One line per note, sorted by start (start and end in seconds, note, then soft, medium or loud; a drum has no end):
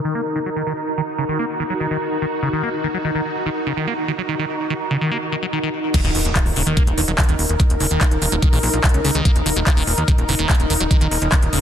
0.00 5.93 D#4 medium
0.00 11.61 D#4 medium
0.00 5.96 F#4 medium
0.00 11.61 A#4 medium
0.00 11.61 A#5 medium
0.05 0.14 D#3 medium
0.15 0.21 A#3 medium
0.36 0.39 D#3 medium
0.46 0.50 F#3 medium
0.56 0.63 D#3 medium
0.67 0.73 D#3 medium
0.98 1.01 D#3 medium
1.18 1.25 C#3 medium
1.29 1.38 D#3 medium
1.39 1.45 A#3 medium
1.60 1.64 D#3 medium
1.70 1.74 F#3 medium
1.80 1.87 D#3 medium
1.91 1.97 D#3 medium
2.22 2.26 D#3 medium
2.42 2.49 C#3 medium
2.53 2.62 D#3 medium
2.63 2.70 A#3 medium
2.84 2.88 D#3 medium
2.94 2.98 F#3 medium
3.05 3.11 D#3 medium
3.15 3.21 D#3 medium
3.46 3.50 D#3 medium
3.67 3.73 C#3 medium
3.77 3.87 D#3 medium
3.87 3.94 A#3 medium
4.08 4.12 D#3 medium
4.18 4.22 F#3 medium
4.29 4.35 D#3 medium
4.39 4.45 D#3 medium
4.70 4.74 D#3 medium
4.91 4.97 C#3 medium
5.01 5.11 D#3 medium
5.11 5.18 A#3 medium
5.32 5.36 D#3 medium
5.42 5.46 F#3 medium
5.53 5.59 D#3 medium
5.63 5.70 D#3 medium
5.94 6.01 D#3 medium
5.94 11.61 D#4 medium
5.94 11.61 A#4 medium
5.94 kick loud
5.94 closed hi-hat medium
5.94 crash loud
5.94 impact medium
6.04 6.11 D#1 medium
6.04 6.11 D#3 medium
6.04 closed hi-hat medium
6.15 6.21 D#1 loud
6.15 open hi-hat loud
6.25 6.31 D#1 loud
6.25 closed hi-hat medium
6.36 6.39 D#3 medium
6.36 kick loud
6.36 clap loud
6.36 closed hi-hat medium
6.46 6.52 D#1 medium
6.46 open hi-hat medium
6.56 6.63 D#1 loud
6.56 6.63 C#3 medium
6.56 open hi-hat loud
6.67 6.73 D#2 medium
6.67 6.76 D#3 medium
6.67 closed hi-hat medium
6.77 6.83 A#3 medium
6.77 kick loud
6.77 closed hi-hat medium
6.87 6.94 D#1 medium
6.87 closed hi-hat medium
6.98 7.04 E1 loud
6.98 7.01 D#3 medium
6.98 open hi-hat loud
7.08 7.14 D#1 medium
7.08 7.12 F#3 medium
7.08 closed hi-hat medium
7.18 7.25 D#3 medium
7.18 kick loud
7.18 clap loud
7.18 closed hi-hat medium
7.23 closed hi-hat medium
7.29 7.35 D#1 medium
7.29 7.35 D#3 medium
7.29 closed hi-hat medium
7.39 7.45 D#1 loud
7.39 open hi-hat loud
7.49 7.56 D#1 loud
7.49 closed hi-hat medium
7.60 7.64 D#3 medium
7.60 kick loud
7.60 closed hi-hat medium
7.70 7.76 D#1 medium
7.70 closed hi-hat medium
7.80 7.87 D#1 loud
7.80 7.87 C#3 medium
7.80 open hi-hat loud
7.91 7.97 D#1 loud
7.91 8.00 D#3 medium
7.91 closed hi-hat medium
8.01 8.07 A#3 medium
8.01 kick loud
8.01 clap loud
8.01 closed hi-hat medium
8.11 8.18 D#1 medium
8.11 closed hi-hat medium
8.22 8.28 D#1 loud
8.22 8.26 D#3 medium
8.22 open hi-hat loud
8.32 8.38 D#1 medium
8.32 8.36 F#3 medium
8.32 closed hi-hat medium
8.42 8.49 D#3 medium
8.42 kick loud
8.42 closed hi-hat medium
8.53 8.59 A#1 medium
8.53 8.59 D#3 medium
8.53 open hi-hat medium
8.63 8.69 A#1 loud
8.63 open hi-hat loud
8.73 8.80 A#1 medium
8.73 closed hi-hat medium
8.84 8.88 D#3 medium
8.84 kick loud
8.84 clap loud
8.84 closed hi-hat medium
8.89 closed hi-hat medium
8.94 9.00 C#2 medium
8.94 closed hi-hat medium
9.05 9.11 C#2 loud
9.05 9.11 C#3 medium
9.05 open hi-hat loud
9.15 9.21 C#2 loud
9.15 9.24 D#3 medium
9.15 closed hi-hat medium
9.25 9.32 A#3 medium
9.25 kick loud
9.25 closed hi-hat medium
9.36 9.42 D#1 medium
9.36 closed hi-hat medium
9.46 9.52 D#1 loud
9.46 9.50 D#3 medium
9.46 open hi-hat loud
9.56 9.63 D#1 loud
9.56 9.60 F#3 medium
9.56 closed hi-hat soft
9.67 9.73 D#3 medium
9.67 kick loud
9.67 clap loud
9.67 closed hi-hat medium
9.77 9.83 D#1 medium
9.77 9.83 D#3 medium
9.77 open hi-hat medium
9.87 9.94 D#1 loud
9.87 open hi-hat loud
9.98 10.04 D#2 medium
9.98 closed hi-hat medium
10.08 10.12 D#3 medium
10.08 kick loud
10.08 closed hi-hat medium
10.18 10.25 D#1 medium
10.18 closed hi-hat medium
10.29 10.35 E1 loud
10.29 10.35 C#3 medium
10.29 open hi-hat loud
10.39 10.45 D#1 medium
10.39 10.49 D#3 medium
10.39 closed hi-hat soft
10.49 10.56 A#3 medium
10.49 kick loud
10.49 clap loud
10.49 closed hi-hat soft
10.55 closed hi-hat medium
10.60 10.66 D#1 medium
10.60 closed hi-hat medium
10.70 10.76 D#1 loud
10.70 10.74 D#3 medium
10.70 open hi-hat loud
10.80 10.87 D#1 medium
10.80 10.84 F#3 medium
10.80 closed hi-hat medium
10.91 10.97 D#3 medium
10.91 kick loud
10.91 closed hi-hat medium
11.01 11.07 D#1 medium
11.01 11.07 D#3 medium
11.01 closed hi-hat medium
11.11 11.18 D#1 loud
11.11 open hi-hat loud
11.22 11.28 D#1 medium
11.22 closed hi-hat medium
11.32 11.36 D#3 medium
11.32 kick loud
11.32 clap loud
11.32 closed hi-hat medium
11.42 11.49 D#1 medium
11.42 closed hi-hat medium
11.53 11.59 D#1 loud
11.53 11.59 C#3 medium
11.53 open hi-hat loud